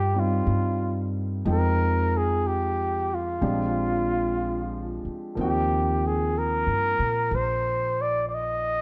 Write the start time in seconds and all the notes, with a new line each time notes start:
Already playing: G2 D#3 F3 A#3 D4 F4 G4
0.14 G3 C4 D#4
0.19 F4
0.47 G2
1.45 F2 F3 G#3 C4 D#4 G5
1.52 A#4
2.17 G#4
2.47 G4
3.14 F4
3.41 A#1 F3 G#3 C4 D4 G4
5.05 muted upright bass stroke
5.35 D#2 F3 A#3 C4 D#4
5.41 G4 G5
6.07 G#4
6.39 A#4
6.67 G2
6.99 A#2
7.31 A#1
7.35 C5
8.02 D5
8.29 D5
8.34 D#5